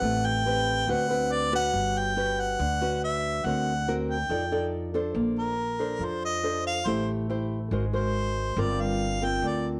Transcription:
Already playing: nylon-string guitar C4 G4 B4, harmonica F#5
0.02 upright bass A1, nylon-string guitar A3
0.26 harmonica G5
0.45 nylon-string guitar C4 G4 B4
0.87 upright bass D2, nylon-string guitar D3 C4 F#4 B4, harmonica F#5
1.10 nylon-string guitar C4 F#4 B4
1.32 harmonica D5
1.52 nylon-string guitar C#4 F#4 B4, harmonica F#5
1.73 upright bass G1, nylon-string guitar G3
1.98 harmonica G5
2.16 nylon-string guitar C#4 F#4 B4
2.40 harmonica F#5
2.59 upright bass D2, nylon-string guitar D3
2.81 nylon-string guitar C#4 F#4 B4
3.04 harmonica E5
3.44 upright bass D2, nylon-string guitar D3 C4 F#4 A#4, harmonica F#5
3.88 nylon-string guitar C4 F#4 A#4
4.11 harmonica G5
4.29 upright bass F2, nylon-string guitar F3 D#4 A4 D5
4.52 nylon-string guitar D#4 A4 D5
4.94 nylon-string guitar D4 A4 C5
5.14 upright bass A#1, nylon-string guitar A#3
5.39 harmonica A#4
5.79 nylon-string guitar D4 A4 C5
5.99 upright bass F2, nylon-string guitar F3
6.05 harmonica C5
6.25 harmonica D#5
6.43 nylon-string guitar D4 A4 C5
6.67 harmonica F5
6.86 upright bass A1, nylon-string guitar A3 E4 G4 C5, harmonica C5
7.30 nylon-string guitar E4 G4 C5
7.71 upright bass G#1, nylon-string guitar G#3 F#4 A#4 C5
7.93 nylon-string guitar F#4 A#4 C5, harmonica C5
8.57 upright bass G1, nylon-string guitar G3 C4 F4 A#4
8.61 harmonica D5
8.81 harmonica F5
9.22 nylon-string guitar C4 F4 A#4, harmonica G5
9.42 upright bass D2, nylon-string guitar D3
9.48 harmonica D5

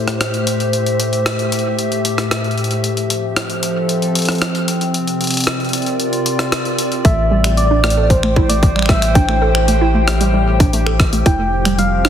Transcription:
Already playing: ambient pad A2 A3 G4 A4 C5 D5 E5
0.08 cross-stick, closed hi-hat
0.21 cross-stick, closed hi-hat
0.34 closed hi-hat
0.47 closed hi-hat
0.60 closed hi-hat
0.73 closed hi-hat
0.86 closed hi-hat
1.00 closed hi-hat
1.13 closed hi-hat
1.26 cross-stick, closed hi-hat
1.39 closed hi-hat
1.52 closed hi-hat
1.59 closed hi-hat
1.79 closed hi-hat
1.92 closed hi-hat
2.05 closed hi-hat
2.18 cross-stick, closed hi-hat
2.31 cross-stick, closed hi-hat
2.44 closed hi-hat
2.51 closed hi-hat
2.58 closed hi-hat
2.64 closed hi-hat
2.71 closed hi-hat
2.84 ambient pad F3, closed hi-hat
2.97 closed hi-hat
3.10 ambient pad C4, closed hi-hat
3.36 ambient pad A4, cross-stick, closed hi-hat
3.50 closed hi-hat
3.63 closed hi-hat
3.89 closed hi-hat
4.02 closed hi-hat
4.15 closed hi-hat
4.19 closed hi-hat
4.22 closed hi-hat
4.25 cross-stick, closed hi-hat
4.29 closed hi-hat
4.32 closed hi-hat
4.35 closed hi-hat
4.38 cross-stick, closed hi-hat
4.42 closed hi-hat
4.55 closed hi-hat
4.68 closed hi-hat
4.81 closed hi-hat
4.94 ambient pad C3, closed hi-hat
5.07 closed hi-hat
5.18 ambient pad D5, closed hi-hat
5.24 closed hi-hat
5.27 closed hi-hat
5.31 closed hi-hat
5.34 closed hi-hat
5.37 closed hi-hat
5.40 closed hi-hat
5.44 ambient pad F4, cross-stick, closed hi-hat
5.60 ambient pad A#4, closed hi-hat
5.65 closed hi-hat
5.69 closed hi-hat
5.73 closed hi-hat
5.78 closed hi-hat
5.82 closed hi-hat
5.86 closed hi-hat
6.00 closed hi-hat
6.13 closed hi-hat
6.26 closed hi-hat
6.39 cross-stick, closed hi-hat
6.52 cross-stick, closed hi-hat
6.65 closed hi-hat
6.79 closed hi-hat
6.92 closed hi-hat
7.05 analog synth bass A1, ambient pad A2, synth arpeggio sound A3, soft synth lead E5, kick, closed hi-hat
7.16 ambient pad A3
7.31 synth arpeggio sound G3
7.43 synth arpeggio sound G3, ambient pad G4, finger snap, closed hi-hat
7.50 ambient pad C5
7.57 soft synth lead D5, closed hi-hat
7.65 ambient pad G5
7.71 synth arpeggio sound D4
7.84 synth arpeggio sound A3, soft synth lead D5, finger snap, cross-stick
7.90 closed hi-hat
7.97 synth arpeggio sound A4
8.03 soft synth lead D5
8.10 soft synth lead C5, kick, closed hi-hat
8.23 synth arpeggio sound A3, finger snap
8.36 synth arpeggio sound E4, kick
8.49 synth arpeggio sound A3, soft synth lead D5, closed hi-hat
8.63 kick, closed hi-hat
8.76 synth arpeggio sound G3, finger snap
8.79 finger snap
8.82 finger snap
8.86 synth arpeggio sound G3, soft synth lead E5, finger snap, kick, cross-stick
9.02 finger snap, closed hi-hat
9.15 synth arpeggio sound D4, soft synth lead G5, kick, closed hi-hat
9.29 synth arpeggio sound A3, finger snap
9.42 synth arpeggio sound A4
9.55 finger snap
9.68 synth arpeggio sound A3, closed hi-hat
9.81 synth arpeggio sound E4
9.94 synth arpeggio sound A3
10.08 cross-stick, closed hi-hat
10.21 synth arpeggio sound G3, closed hi-hat
10.34 synth arpeggio sound G3
10.60 synth arpeggio sound D4, kick, closed hi-hat
10.73 synth arpeggio sound A3, closed hi-hat
10.86 synth arpeggio sound A4, finger snap
11.00 kick, cross-stick
11.13 synth arpeggio sound A3, closed hi-hat
11.26 analog synth bass F1, ambient pad F3, synth arpeggio sound E4, soft synth lead G5, kick, closed hi-hat
11.39 synth arpeggio sound A3
11.43 ambient pad C4
11.65 synth arpeggio sound G3, finger snap, closed hi-hat
11.79 synth arpeggio sound G3, soft synth lead F5, closed hi-hat
11.94 ambient pad A4
12.05 synth arpeggio sound D4, finger snap, cross-stick

